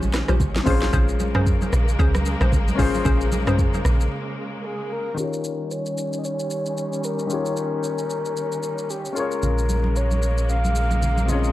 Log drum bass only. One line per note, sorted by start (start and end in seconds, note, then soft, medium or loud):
0.00 0.24 A#1 loud
0.29 0.62 A#1 medium
0.67 0.90 A#1 loud
0.93 1.69 A#1 loud
1.73 1.96 A#1 loud
1.99 2.36 C#2 loud
2.41 2.74 A#1 loud
2.79 3.02 G#1 loud
3.05 3.81 A#1 loud
3.85 4.08 A#1 loud